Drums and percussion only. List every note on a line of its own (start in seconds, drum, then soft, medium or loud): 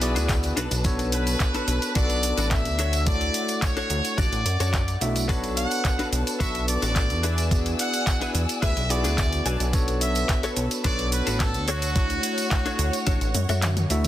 0.02 open hi-hat loud
0.02 shaker medium
0.16 closed hi-hat soft
0.16 tambourine medium
0.16 shaker soft
0.29 kick loud
0.29 clap loud
0.29 closed hi-hat medium
0.29 tambourine medium
0.29 shaker soft
0.43 closed hi-hat soft
0.43 tambourine soft
0.43 shaker soft
0.57 open hi-hat loud
0.57 shaker medium
0.71 closed hi-hat soft
0.71 tambourine medium
0.71 shaker soft
0.84 kick loud
0.84 closed hi-hat medium
0.84 tambourine medium
0.84 shaker soft
0.99 closed hi-hat soft
0.99 tambourine soft
0.99 shaker soft
1.12 open hi-hat loud
1.12 shaker medium
1.27 closed hi-hat soft
1.27 tambourine medium
1.27 shaker soft
1.40 kick loud
1.40 clap loud
1.40 closed hi-hat medium
1.40 tambourine medium
1.40 shaker soft
1.54 closed hi-hat soft
1.54 tambourine soft
1.54 shaker soft
1.68 open hi-hat loud
1.68 shaker medium
1.82 closed hi-hat soft
1.82 tambourine medium
1.82 shaker soft
1.95 kick loud
1.95 closed hi-hat medium
1.95 tambourine medium
1.95 shaker soft
2.10 closed hi-hat soft
2.10 tambourine soft
2.10 shaker soft
2.23 open hi-hat loud
2.23 shaker medium
2.38 closed hi-hat soft
2.38 tambourine medium
2.38 shaker soft
2.51 kick loud
2.51 clap loud
2.51 closed hi-hat medium
2.51 tambourine medium
2.51 shaker soft
2.65 closed hi-hat soft
2.65 tambourine soft
2.65 shaker soft
2.79 open hi-hat loud
2.79 shaker medium
2.93 closed hi-hat soft
2.93 tambourine medium
2.93 shaker soft
3.07 kick loud
3.07 closed hi-hat medium
3.07 tambourine medium
3.07 shaker soft
3.21 closed hi-hat soft
3.21 tambourine soft
3.21 shaker soft
3.34 open hi-hat loud
3.34 shaker medium
3.48 closed hi-hat soft
3.48 tambourine medium
3.48 shaker soft
3.62 kick loud
3.62 clap loud
3.62 closed hi-hat medium
3.62 tambourine medium
3.62 shaker soft
3.77 closed hi-hat soft
3.77 tambourine soft
3.77 shaker soft
3.90 open hi-hat medium
3.90 shaker medium
4.04 closed hi-hat soft
4.04 tambourine medium
4.04 shaker soft
4.18 kick loud
4.18 closed hi-hat medium
4.18 tambourine medium
4.18 shaker soft
4.32 closed hi-hat soft
4.32 tambourine soft
4.32 shaker soft
4.46 open hi-hat loud
4.46 shaker medium
4.60 closed hi-hat soft
4.60 tambourine medium
4.60 shaker soft
4.73 kick loud
4.73 clap loud
4.73 closed hi-hat medium
4.73 tambourine medium
4.73 shaker soft
4.88 closed hi-hat soft
4.88 tambourine soft
4.88 shaker soft
5.01 open hi-hat medium
5.01 shaker medium
5.16 closed hi-hat soft
5.16 tambourine medium
5.16 shaker soft
5.29 kick loud
5.29 closed hi-hat medium
5.29 tambourine medium
5.29 shaker soft
5.43 closed hi-hat soft
5.43 tambourine soft
5.43 shaker soft
5.57 open hi-hat loud
5.57 shaker medium
5.71 closed hi-hat soft
5.71 tambourine medium
5.71 shaker soft
5.85 kick loud
5.85 clap loud
5.85 closed hi-hat medium
5.85 tambourine medium
5.85 shaker soft
5.99 closed hi-hat soft
5.99 tambourine soft
5.99 shaker soft
6.13 open hi-hat medium
6.13 shaker medium
6.27 closed hi-hat soft
6.27 tambourine medium
6.27 shaker soft
6.40 kick loud
6.40 closed hi-hat medium
6.40 tambourine medium
6.40 shaker soft
6.55 closed hi-hat soft
6.55 tambourine soft
6.55 shaker soft
6.68 open hi-hat loud
6.68 shaker medium
6.82 closed hi-hat soft
6.82 tambourine medium
6.82 shaker soft
6.96 kick loud
6.96 clap loud
6.96 closed hi-hat medium
6.96 tambourine medium
6.96 shaker soft
7.10 closed hi-hat soft
7.10 tambourine soft
7.10 shaker soft
7.23 open hi-hat medium
7.23 shaker medium
7.38 closed hi-hat soft
7.38 tambourine medium
7.38 shaker soft
7.51 kick loud
7.51 closed hi-hat medium
7.51 tambourine medium
7.51 shaker soft
7.66 closed hi-hat soft
7.66 tambourine soft
7.66 shaker soft
7.79 open hi-hat loud
7.79 shaker medium
7.94 closed hi-hat soft
7.94 tambourine medium
7.94 shaker soft
8.07 kick loud
8.07 clap loud
8.07 closed hi-hat medium
8.07 tambourine medium
8.07 shaker soft
8.21 closed hi-hat soft
8.21 tambourine soft
8.21 shaker soft
8.35 open hi-hat medium
8.35 shaker medium
8.49 closed hi-hat soft
8.49 tambourine medium
8.49 shaker soft
8.62 kick loud
8.62 closed hi-hat medium
8.62 tambourine medium
8.62 shaker medium
8.77 closed hi-hat soft
8.77 tambourine soft
8.77 shaker soft
8.90 open hi-hat loud
8.90 shaker medium
9.04 closed hi-hat soft
9.04 tambourine medium
9.04 shaker soft
9.18 kick loud
9.18 clap loud
9.18 closed hi-hat medium
9.18 tambourine medium
9.18 shaker soft
9.32 closed hi-hat soft
9.32 tambourine soft
9.32 shaker soft
9.46 open hi-hat medium
9.46 shaker medium
9.60 closed hi-hat soft
9.60 tambourine medium
9.60 shaker soft
9.73 kick loud
9.73 closed hi-hat medium
9.73 tambourine medium
9.73 shaker soft
9.88 closed hi-hat soft
9.88 tambourine soft
9.88 shaker soft
10.01 open hi-hat loud
10.01 shaker medium
10.15 closed hi-hat soft
10.15 tambourine medium
10.15 shaker soft
10.29 kick loud
10.29 clap loud
10.29 closed hi-hat medium
10.29 tambourine medium
10.29 shaker soft
10.43 closed hi-hat soft
10.43 tambourine soft
10.43 shaker soft
10.57 open hi-hat medium
10.57 shaker medium
10.71 closed hi-hat soft
10.71 tambourine medium
10.71 shaker soft
10.84 kick loud
10.84 closed hi-hat medium
10.84 tambourine medium
10.84 shaker soft
10.99 closed hi-hat soft
10.99 tambourine soft
10.99 shaker soft
11.12 open hi-hat loud
11.12 shaker medium
11.27 closed hi-hat soft
11.27 tambourine medium
11.27 shaker soft
11.40 kick loud
11.40 clap loud
11.40 closed hi-hat medium
11.40 tambourine medium
11.40 shaker soft
11.54 closed hi-hat soft
11.54 tambourine soft
11.54 shaker soft
11.68 open hi-hat medium
11.68 shaker medium
11.82 closed hi-hat soft
11.82 tambourine medium
11.82 shaker soft
11.95 kick loud
11.95 closed hi-hat medium
11.95 tambourine medium
11.95 shaker soft
12.10 closed hi-hat soft
12.10 tambourine soft
12.10 shaker soft
12.23 open hi-hat loud
12.23 shaker medium
12.38 closed hi-hat soft
12.38 tambourine medium
12.38 shaker soft
12.51 kick loud
12.51 clap loud
12.51 closed hi-hat medium
12.51 tambourine medium
12.51 shaker soft
12.66 closed hi-hat soft
12.66 tambourine soft
12.66 shaker soft
12.79 open hi-hat medium
12.79 shaker medium
12.93 closed hi-hat soft
12.93 tambourine medium
12.93 shaker soft
13.07 kick loud
13.07 closed hi-hat medium
13.07 tambourine medium
13.07 shaker soft
13.21 closed hi-hat soft
13.21 tambourine soft
13.21 shaker soft
13.35 open hi-hat loud
13.35 high tom medium
13.35 shaker medium
13.49 closed hi-hat soft
13.49 high tom medium
13.49 tambourine medium
13.49 shaker soft
13.62 clap loud
13.62 closed hi-hat medium
13.62 mid tom medium
13.62 tambourine medium
13.62 shaker soft
13.77 closed hi-hat soft
13.77 mid tom medium
13.77 tambourine soft
13.77 shaker soft
13.90 open hi-hat medium
13.90 shaker medium
14.04 closed hi-hat soft
14.04 mid tom medium
14.04 tambourine medium